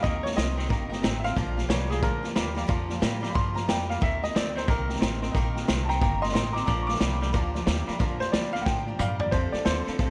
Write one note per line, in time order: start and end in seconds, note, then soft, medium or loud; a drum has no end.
0.03 0.36 D#2 medium
0.03 0.24 D#3 medium
0.03 0.35 D#3 medium
0.03 0.25 G3 medium
0.03 0.35 A#3 medium
0.03 0.24 C4 loud
0.03 0.23 G4 loud
0.03 0.22 A#4 loud
0.03 0.16 D#5 loud
0.03 0.23 D#5 medium
0.03 0.17 G5 medium
0.03 0.17 A#5 loud
0.03 kick loud
0.03 snare soft
0.23 0.36 C4 soft
0.23 0.36 G4 soft
0.23 0.36 A#4 soft
0.23 0.36 C#5 loud
0.23 0.32 D#5 medium
0.23 0.32 G5 medium
0.23 0.33 A#5 medium
0.23 snare soft
0.31 snare soft
0.36 0.69 C2 medium
0.36 0.56 D#3 medium
0.36 0.57 G3 medium
0.36 0.57 C4 medium
0.36 0.56 C4 medium
0.36 0.56 G4 medium
0.36 0.55 A#4 medium
0.36 0.49 D#5 medium
0.36 1.01 D#5 loud
0.36 0.49 G5 medium
0.36 0.50 A#5 medium
0.36 snare loud
0.36 hi-hat pedal medium
0.56 0.69 D#3 medium
0.56 0.69 C4 medium
0.56 0.69 C4 soft
0.56 0.68 G4 medium
0.56 0.69 A#4 medium
0.56 0.65 D#5 medium
0.56 0.66 G5 medium
0.56 0.66 A#5 medium
0.56 snare soft
0.69 1.02 G1 medium
0.69 0.90 D#3 medium
0.69 1.01 D#3 medium
0.69 0.90 G3 medium
0.69 1.01 A#3 medium
0.69 0.91 C4 medium
0.69 0.90 G4 medium
0.69 0.88 A#4 medium
0.69 0.82 D#5 loud
0.69 0.83 G5 medium
0.69 0.83 A#5 loud
0.69 kick loud
0.69 snare soft
0.89 1.02 C4 medium
0.89 1.03 G4 medium
0.89 1.03 A#4 medium
0.89 0.97 D#5 medium
0.89 0.98 G5 medium
0.89 0.98 A#5 loud
0.89 snare soft
1.02 1.36 A1 loud
1.02 1.22 D#3 medium
1.02 1.24 G3 medium
1.02 1.24 C4 medium
1.02 1.22 C4 medium
1.02 1.24 G4 medium
1.02 1.22 A#4 medium
1.02 1.15 D#5 loud
1.02 1.16 G5 loud
1.02 1.16 A#5 loud
1.02 snare loud
1.02 hi-hat pedal medium
1.20 1.31 D#5 medium
1.20 1.22 E5 medium
1.24 1.36 D#3 medium
1.24 1.36 C4 medium
1.24 1.37 C4 soft
1.24 1.37 G4 soft
1.24 1.36 A#4 medium
1.24 1.68 F5 loud
1.24 snare soft
1.36 1.68 A#1 loud
1.36 1.57 A#2 medium
1.36 1.67 A#2 medium
1.36 1.58 D3 medium
1.36 1.67 F3 loud
1.36 1.57 F3 medium
1.36 1.58 A#3 medium
1.36 1.56 F4 medium
1.36 1.56 G4 loud
1.36 1.49 D5 loud
1.36 1.49 F5 medium
1.36 1.49 A#5 loud
1.36 kick loud
1.36 snare soft
1.56 1.69 F3 soft
1.56 1.70 A#3 soft
1.56 1.70 F4 medium
1.56 1.69 G4 medium
1.56 1.64 D5 medium
1.56 1.64 F5 medium
1.56 1.64 A#5 medium
1.56 snare soft
1.69 2.01 C2 loud
1.69 1.88 A#2 medium
1.69 1.90 F3 medium
1.69 1.89 G3 loud
1.69 1.91 A#3 medium
1.69 1.90 F4 medium
1.69 1.88 G4 medium
1.69 1.89 C#5 medium
1.69 1.82 D5 medium
1.69 1.83 F5 medium
1.69 1.83 A#5 medium
1.69 snare loud
1.69 hi-hat pedal medium
1.89 2.02 A#2 medium
1.89 2.02 F3 medium
1.89 2.02 G3 medium
1.89 2.02 A#3 medium
1.89 2.03 F4 medium
1.89 2.02 G4 medium
1.89 2.02 G#4 medium
1.89 1.98 D5 medium
1.89 1.98 F5 medium
1.89 1.99 A#5 medium
1.89 snare soft
2.02 2.35 D2 medium
2.02 2.23 A#2 medium
2.02 2.34 A#2 medium
2.02 2.24 D3 medium
2.02 2.24 F3 medium
2.02 2.34 F3 medium
2.02 2.23 A#3 medium
2.02 2.23 F4 medium
2.02 2.21 G4 medium
2.02 2.67 A#4 loud
2.02 2.15 D5 loud
2.02 2.15 F5 medium
2.02 2.16 A#5 loud
2.02 kick loud
2.02 snare soft
2.23 2.33 F3 soft
2.23 2.34 A#3 medium
2.23 2.35 F4 medium
2.23 2.35 G4 medium
2.23 2.31 D5 medium
2.23 2.31 F5 medium
2.23 2.32 A#5 medium
2.23 snare soft
2.34 2.68 D#2 medium
2.34 2.54 A#2 medium
2.34 2.56 F3 medium
2.34 2.55 G3 medium
2.34 2.55 A#3 medium
2.34 2.55 F4 medium
2.34 2.53 G4 medium
2.34 2.48 D5 loud
2.34 2.49 F5 medium
2.34 2.49 A#5 loud
2.34 snare loud
2.34 hi-hat pedal medium
2.54 2.68 A#2 medium
2.54 2.67 F3 medium
2.54 2.68 G3 medium
2.54 2.67 A#3 medium
2.54 2.67 F4 medium
2.54 2.68 G4 medium
2.54 2.64 D5 medium
2.54 2.65 F5 medium
2.54 snare soft
2.59 2.65 A#5 loud
2.67 3.01 F2 medium
2.67 2.89 A#2 loud
2.67 2.99 A#2 medium
2.67 2.89 D3 loud
2.67 2.89 F3 medium
2.67 3.00 F3 medium
2.67 2.89 A#3 loud
2.67 2.87 F4 medium
2.67 2.86 G4 loud
2.67 2.81 D5 loud
2.67 2.81 F5 loud
2.67 2.82 A#5 loud
2.67 kick loud
2.67 snare soft
2.88 2.99 F3 medium
2.88 2.99 A#3 medium
2.88 3.00 F4 soft
2.88 3.01 G4 medium
2.88 2.98 D5 medium
2.88 2.98 F5 medium
2.88 snare soft
2.92 2.98 A#5 loud
3.00 3.34 A2 medium
3.00 3.21 A#2 medium
3.00 3.22 F3 medium
3.00 3.21 G3 loud
3.00 3.22 A#3 medium
3.00 3.21 F4 medium
3.00 3.19 G4 medium
3.00 3.14 D5 medium
3.00 3.15 F5 medium
3.00 3.15 A#5 loud
3.00 snare loud
3.00 hi-hat pedal medium
3.20 3.34 A#2 medium
3.20 3.33 F3 medium
3.20 3.34 G3 medium
3.20 3.33 A#3 medium
3.20 3.34 F4 medium
3.20 3.34 G4 medium
3.20 3.30 D5 medium
3.20 3.30 F5 medium
3.20 3.31 A#5 loud
3.20 snare soft
3.30 3.55 A#2 medium
3.30 3.55 D3 medium
3.30 3.33 B5 medium
3.34 3.67 G2 medium
3.34 3.66 A#2 medium
3.34 3.55 F3 medium
3.34 3.66 F3 medium
3.34 3.54 A#3 medium
3.34 3.54 F4 medium
3.34 3.53 G4 medium
3.34 3.47 D5 loud
3.34 3.48 F5 medium
3.34 3.48 A#5 loud
3.34 3.55 C6 loud
3.34 kick loud
3.34 snare soft
3.54 3.64 F3 soft
3.54 3.65 A#3 soft
3.54 3.67 F4 medium
3.54 3.67 G4 medium
3.54 3.63 D5 medium
3.54 3.63 F5 medium
3.54 3.68 A#5 medium
3.54 3.64 A#5 medium
3.54 snare soft
3.66 4.01 F2 loud
3.66 3.87 A#2 medium
3.66 3.88 F3 medium
3.66 3.88 A#3 medium
3.66 3.87 F4 medium
3.66 3.86 G4 medium
3.66 3.80 D5 loud
3.66 3.81 F5 medium
3.66 3.89 G5 medium
3.66 3.81 A#5 loud
3.66 snare loud
3.66 hi-hat pedal medium
3.70 3.88 G3 medium
3.87 4.00 A#2 medium
3.87 4.01 F3 soft
3.87 4.00 G3 medium
3.87 4.01 A#3 soft
3.87 4.01 F4 soft
3.87 4.01 G4 soft
3.87 3.97 D5 medium
3.87 3.97 F5 medium
3.87 4.02 F5 medium
3.87 3.97 A#5 medium
3.87 snare soft
4.00 4.34 D#2 medium
4.00 4.22 D#3 medium
4.00 4.32 D#3 medium
4.00 4.22 G3 medium
4.00 4.32 A#3 loud
4.00 4.22 C4 medium
4.00 4.22 G4 medium
4.00 4.22 A#4 loud
4.00 4.14 D#5 medium
4.00 4.22 E5 medium
4.00 4.14 G5 medium
4.00 4.15 A#5 loud
4.00 kick loud
4.00 snare soft
4.22 4.35 C4 soft
4.22 4.35 G4 soft
4.22 4.35 A#4 medium
4.22 4.30 D#5 medium
4.22 4.35 D#5 loud
4.22 4.30 G5 medium
4.22 4.30 A#5 medium
4.22 snare soft
4.35 4.67 D2 medium
4.35 4.54 D#3 medium
4.35 4.56 G3 medium
4.35 4.54 C4 loud
4.35 4.56 C4 medium
4.35 4.56 G4 medium
4.35 4.55 A#4 medium
4.35 4.56 D5 loud
4.35 4.48 G5 medium
4.35 4.48 A#5 medium
4.35 snare loud
4.35 hi-hat pedal medium
4.55 4.66 D#3 medium
4.55 4.67 C4 medium
4.55 4.68 C4 soft
4.55 4.68 G4 medium
4.55 4.68 A#4 medium
4.55 4.68 C5 medium
4.55 4.63 D#5 medium
4.55 4.63 G5 medium
4.55 4.64 A#5 medium
4.55 snare soft
4.67 5.00 C2 medium
4.67 4.98 D#3 medium
4.67 4.89 D#3 medium
4.67 4.89 G3 medium
4.67 4.99 A#3 medium
4.67 4.89 C4 medium
4.67 4.88 G4 medium
4.67 5.65 A#4 medium
4.67 4.88 A#4 medium
4.67 4.80 D#5 loud
4.67 4.80 G5 medium
4.67 4.81 A#5 loud
4.67 kick loud
4.67 snare soft
4.87 5.01 C4 soft
4.87 5.02 G4 soft
4.87 5.01 A#4 medium
4.87 4.95 D#5 medium
4.87 4.96 G5 medium
4.87 4.97 A#5 medium
4.87 snare soft
4.96 snare soft
5.00 5.34 A1 loud
5.00 5.20 D#3 medium
5.00 5.22 G3 medium
5.00 5.20 C4 medium
5.00 5.23 C4 medium
5.00 5.22 G4 medium
5.00 5.13 D#5 loud
5.00 5.14 G5 medium
5.00 5.14 A#5 loud
5.00 snare loud
5.00 hi-hat pedal medium
5.04 5.21 A#4 medium
5.22 5.33 D#3 medium
5.22 5.33 C4 medium
5.22 5.35 C4 soft
5.22 5.35 G4 soft
5.22 5.34 A#4 medium
5.22 5.29 D#5 medium
5.22 5.30 G5 medium
5.22 5.30 A#5 loud
5.22 snare soft
5.32 5.67 A#1 medium
5.32 5.65 D#3 medium
5.32 5.56 D#3 medium
5.32 5.56 G3 loud
5.32 5.65 A#3 loud
5.32 5.46 D#5 loud
5.32 5.46 G5 loud
5.32 5.47 A#5 loud
5.32 kick loud
5.32 snare soft
5.36 5.56 C4 medium
5.36 5.56 G4 medium
5.36 5.55 A#4 loud
5.53 5.68 A#4 medium
5.53 5.62 D#5 medium
5.53 5.62 G5 medium
5.53 5.62 A#5 loud
5.53 snare soft
5.58 5.67 C4 soft
5.58 5.68 G4 medium
5.66 6.01 C2 medium
5.66 5.87 D#3 medium
5.66 5.88 G3 medium
5.66 5.89 C4 medium
5.66 5.87 C4 medium
5.66 5.89 G4 medium
5.66 5.79 D#5 medium
5.66 5.80 G5 medium
5.66 5.80 A#5 medium
5.66 snare loud
5.66 hi-hat pedal medium
5.70 5.88 A#4 medium
5.85 5.95 D#5 medium
5.85 5.96 G5 medium
5.85 5.87 A5 medium
5.89 6.00 D#3 medium
5.89 6.00 C4 medium
5.89 6.01 C4 medium
5.89 6.01 G4 medium
5.89 6.01 A#4 medium
5.89 6.00 G5 medium
5.89 6.01 A#5 loud
5.89 5.96 A#5 medium
5.89 snare soft
6.00 6.34 G1 medium
6.00 6.22 D#3 medium
6.00 6.32 D#3 medium
6.00 6.22 G3 medium
6.00 6.32 A#3 loud
6.00 6.22 C4 medium
6.00 6.21 G4 medium
6.00 6.21 A#4 medium
6.00 6.13 D#5 loud
6.00 6.13 G5 medium
6.00 6.21 G5 medium
6.00 6.14 A#5 loud
6.00 6.22 A#5 medium
6.00 kick loud
6.00 snare soft
6.21 6.33 C4 soft
6.21 6.34 G4 soft
6.21 6.34 A#4 medium
6.21 6.29 D#5 medium
6.21 6.31 D#5 medium
6.21 6.30 G5 medium
6.21 6.30 A#5 medium
6.21 6.32 C6 loud
6.21 snare soft
6.29 6.53 D#5 medium
6.29 snare soft
6.33 6.67 A1 loud
6.33 6.53 D#3 medium
6.33 6.55 G3 medium
6.33 6.55 C4 medium
6.33 6.54 C4 medium
6.33 6.55 G4 medium
6.33 6.53 A#4 medium
6.33 6.47 D#5 medium
6.33 6.47 G5 medium
6.33 6.47 A#5 loud
6.33 6.54 C6 loud
6.33 snare loud
6.33 hi-hat pedal medium
6.52 6.66 D#3 medium
6.52 6.67 C4 medium
6.52 6.67 G4 soft
6.52 6.67 A#4 medium
6.52 6.62 D#5 medium
6.52 6.63 G5 medium
6.52 6.64 A#5 medium
6.52 6.65 D6 loud
6.52 snare soft
6.56 6.67 C4 soft
6.56 6.63 A#5 medium
6.66 7.00 A#1 medium
6.66 6.88 A#2 medium
6.66 6.98 A#2 medium
6.66 6.88 D3 loud
6.66 6.88 F3 medium
6.66 6.98 F3 loud
6.66 6.88 A#3 medium
6.66 6.87 D4 loud
6.66 6.87 G4 loud
6.66 6.80 D5 medium
6.66 6.80 F5 medium
6.66 6.86 A#5 medium
6.66 6.81 A#5 loud
6.66 6.85 D6 loud
6.66 kick loud
6.66 snare soft
6.82 6.85 C#6 medium
6.87 6.98 F3 soft
6.87 6.99 A#3 medium
6.87 7.00 D4 medium
6.87 7.00 G4 medium
6.87 6.96 D5 medium
6.87 6.97 F5 medium
6.87 7.84 D6 loud
6.87 snare soft
6.91 6.97 A#5 medium
6.91 snare soft
6.99 7.33 C2 medium
6.99 7.19 A#2 medium
6.99 7.21 F3 medium
6.99 7.19 G3 medium
6.99 7.21 A#3 medium
6.99 7.20 D4 medium
6.99 7.19 G4 medium
6.99 7.14 D5 medium
6.99 snare loud
6.99 hi-hat pedal medium
7.03 7.14 F5 medium
7.03 7.15 A#5 medium
7.20 7.33 A#2 medium
7.20 7.32 F3 medium
7.20 7.33 G3 loud
7.20 7.33 A#3 medium
7.20 7.33 D4 medium
7.20 7.33 G4 medium
7.20 7.29 D5 medium
7.20 7.30 F5 medium
7.20 7.30 A#5 medium
7.20 snare soft
7.33 7.66 D2 medium
7.33 7.54 A#2 medium
7.33 7.64 A#2 medium
7.33 7.54 D3 medium
7.33 7.54 F3 medium
7.33 7.65 F3 medium
7.33 7.54 A#3 medium
7.33 7.54 D4 medium
7.33 7.53 G4 medium
7.33 7.46 D5 loud
7.33 7.47 F5 loud
7.33 7.47 A#5 loud
7.33 kick loud
7.33 snare soft
7.54 7.65 F3 medium
7.54 7.66 A#3 medium
7.54 7.67 D4 medium
7.54 7.67 G4 medium
7.54 7.62 D5 loud
7.54 7.62 F5 loud
7.54 7.63 A#5 loud
7.54 snare soft
7.66 7.87 D#2 loud
7.66 7.86 A#2 medium
7.66 7.88 F3 medium
7.66 7.86 G3 medium
7.66 7.87 A#3 medium
7.66 7.87 D4 medium
7.66 7.85 G4 medium
7.66 7.79 D5 loud
7.66 7.79 F5 loud
7.66 7.79 A#5 loud
7.66 snare loud
7.66 hi-hat pedal medium
7.86 7.99 A#2 medium
7.86 7.99 F3 soft
7.86 7.99 G3 medium
7.86 8.00 A#3 medium
7.86 8.00 D4 medium
7.86 8.00 G4 medium
7.86 7.95 D5 medium
7.86 7.95 F5 medium
7.86 7.96 A#5 loud
7.86 muted upright bass stroke soft
7.86 snare soft
7.99 8.32 F2 medium
7.99 8.20 A#2 medium
7.99 8.31 A#2 medium
7.99 8.21 D3 medium
7.99 8.21 F3 loud
7.99 8.31 F3 loud
7.99 8.21 A#3 loud
7.99 8.21 D4 loud
7.99 8.20 G4 loud
7.99 8.12 D5 loud
7.99 8.13 F5 loud
7.99 8.13 A#5 loud
7.99 kick loud
7.99 snare soft
8.20 8.32 F3 soft
8.20 8.33 A#3 soft
8.20 8.34 G4 medium
8.20 8.33 C5 loud
8.20 8.28 D5 medium
8.20 8.28 F5 medium
8.20 8.29 A#5 medium
8.20 snare soft
8.32 8.66 D2 medium
8.32 8.52 A#2 medium
8.32 8.54 F3 medium
8.32 8.52 G3 loud
8.32 8.54 A#3 medium
8.32 8.54 D4 medium
8.32 8.45 D5 medium
8.32 8.53 D5 medium
8.32 8.46 F5 medium
8.32 8.46 A#5 medium
8.32 snare loud
8.32 hi-hat pedal medium
8.36 8.53 G4 medium
8.53 8.65 A#2 medium
8.53 8.66 F3 medium
8.53 8.65 G3 medium
8.53 8.66 A#3 medium
8.53 8.66 D4 soft
8.53 8.66 G4 medium
8.53 8.62 D5 medium
8.53 8.66 F5 loud
8.53 8.62 F5 medium
8.53 8.62 A#5 medium
8.53 snare soft
8.62 8.78 D5 loud
8.62 8.65 F#5 medium
8.62 8.98 G5 loud
8.66 8.99 A2 medium
8.66 8.97 A#2 medium
8.66 8.87 A#2 medium
8.66 8.88 D3 medium
8.66 8.97 F3 medium
8.66 8.88 F3 medium
8.66 8.88 A#3 medium
8.66 8.87 D4 medium
8.66 8.86 G4 medium
8.66 8.79 F5 medium
8.66 8.79 A#5 loud
8.66 kick loud
8.66 snare medium
8.86 8.98 F3 soft
8.86 8.99 A#3 soft
8.86 9.00 D4 soft
8.86 9.00 G4 medium
8.86 8.94 D5 medium
8.86 8.95 F5 medium
8.86 8.95 A#5 medium
8.98 9.32 G2 loud
8.98 9.18 A#2 medium
8.98 9.20 F3 medium
8.98 9.19 G3 loud
8.98 9.21 A#3 medium
8.98 9.20 D4 medium
8.98 9.20 G4 medium
8.98 9.11 D5 loud
8.98 9.12 F5 medium
8.98 9.21 F5 loud
8.98 9.12 A#5 loud
8.98 hi-hat pedal medium
8.98 mid tom medium
9.19 9.31 A#2 medium
9.19 9.32 G3 medium
9.19 9.33 A#3 soft
9.19 9.33 D4 medium
9.19 9.33 G4 medium
9.19 9.33 D5 loud
9.19 9.29 D5 medium
9.19 9.29 F5 medium
9.19 floor tom medium
9.23 9.32 F3 soft
9.23 9.30 A#5 medium
9.31 9.52 F2 medium
9.31 9.64 F2 medium
9.31 9.64 C3 loud
9.31 9.54 F3 medium
9.31 9.54 C4 medium
9.31 9.53 D4 medium
9.31 9.52 A4 medium
9.31 9.52 C5 loud
9.31 9.45 C5 loud
9.31 9.46 F5 medium
9.31 9.46 A5 loud
9.31 kick loud
9.31 snare soft
9.52 9.66 C4 soft
9.52 9.66 D4 soft
9.52 9.66 A4 medium
9.52 9.62 C5 medium
9.52 9.65 D5 medium
9.52 9.62 F5 medium
9.52 9.62 A5 medium
9.52 muted upright bass stroke soft
9.52 snare soft
9.65 9.86 D#2 medium
9.65 9.85 F2 medium
9.65 9.85 D3 medium
9.65 9.87 C4 medium
9.65 9.86 D4 medium
9.65 10.10 A4 medium
9.65 10.10 C5 loud
9.65 9.79 C5 medium
9.65 9.79 F5 medium
9.65 snare loud
9.65 hi-hat pedal medium
9.86 9.98 F2 medium
9.86 9.98 D3 medium
9.86 9.99 C4 medium
9.86 9.99 D4 medium
9.86 9.99 A4 medium
9.86 9.94 C5 medium
9.86 9.95 F5 medium
9.86 9.95 A5 medium
9.86 muted upright bass stroke soft
9.86 snare soft
9.98 10.10 D2 medium
9.98 10.10 F2 medium
9.98 10.10 C3 medium
9.98 10.10 F3 medium
9.98 10.10 C4 medium
9.98 10.10 D4 medium
9.98 10.10 A4 medium
9.98 10.10 C5 loud
9.98 10.10 F5 medium
9.98 10.10 A5 loud
9.98 kick loud
9.98 snare soft